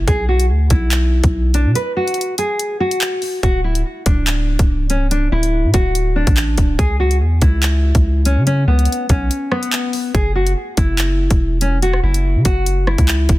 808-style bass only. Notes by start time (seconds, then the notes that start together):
0.08 B1
0.50 D2
0.71 B1
1.24 B1
1.66 B2
3.43 D1
4.06 D1
4.59 C#1
5.32 D1
5.64 A2
5.74 D1
6.27 A1
6.58 D1
6.79 C#2
7.21 E2
7.42 C#2
7.95 C#2
8.37 C#3
8.68 C#2
9.10 B1
10.15 F#1
10.78 F#1
11.31 E1
12.03 F#1
12.35 C#3
12.45 F#1
12.98 C#2
13.29 F#1